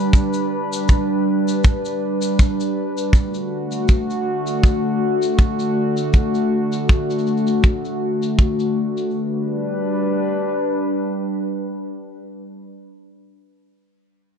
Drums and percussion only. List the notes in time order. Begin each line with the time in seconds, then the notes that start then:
0.13 kick, shaker
0.34 shaker
0.73 shaker
0.88 kick, shaker
1.48 shaker
1.64 kick, shaker
1.85 shaker
2.22 shaker
2.39 kick, shaker
2.60 shaker
2.98 shaker
3.13 kick, shaker
3.34 shaker
3.72 shaker
3.88 kick, shaker
4.10 shaker
4.47 shaker
4.63 kick, shaker
5.22 shaker
5.39 kick, shaker
5.59 shaker
5.97 shaker
6.13 kick, shaker
6.35 shaker
6.72 shaker
6.89 kick, shaker
7.10 shaker
7.18 shaker
7.27 shaker
7.37 shaker
7.47 shaker
7.63 kick, shaker
7.85 shaker
8.23 shaker
8.39 kick, shaker
8.60 shaker
8.97 shaker